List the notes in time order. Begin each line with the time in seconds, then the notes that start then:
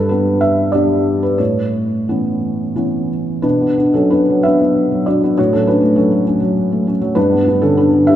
Already playing: G2 A4 B4
0.09 G3 B3 D4 B4
0.41 E5
0.72 G3 B3 D4 D5
1.23 B4
1.38 A2 C#5
2.08 E3 B3 C#4
2.76 E3 B3 C#4
3.42 B2 D4 B4
3.61 B3
3.78 B3 D4
3.94 F#3 C#4 A4
4.10 B3 D4 B4
4.30 F#3
4.43 B3 D4 B4 E5
4.61 B3
4.92 F#3
5.06 B3 D4 F#4 D5
5.24 B3
5.38 A2 F#4 C#5
5.53 F#3 C#4 A4
5.67 C#4 D4 B4
5.83 A3
5.96 F#3 C#4 A4
6.12 A3
6.27 C#4
6.42 F#3
6.72 A3
6.87 C#4
7.01 F#3
7.15 G2 D4 B4
7.32 B3
7.47 B3 D4
7.62 D3 C#4 A4
7.77 B3 D4 B4
7.93 D3
8.07 B3 D4 G4 E5